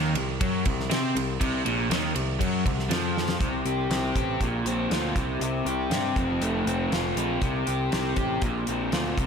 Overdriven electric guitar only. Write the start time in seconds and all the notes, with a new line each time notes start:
Already playing: D#3
0.16 C3
0.41 F#3
0.66 C3
0.91 C4
1.16 C3
1.40 C3
1.65 A#2
1.91 D#3
2.15 C3
2.39 F#3
2.66 C3
2.90 F3
3.40 C3
3.66 G4
3.91 C4
4.16 G4
4.41 A#2
4.66 C4
4.92 F4
5.17 C3
5.42 C3
5.67 G4
5.93 C4
6.18 F2
6.43 A3
6.67 C4
6.92 F4
7.18 C4
7.42 C3
7.67 G4
7.92 C4
8.17 G4
8.42 A#2
8.69 C4
8.93 F4
9.19 C3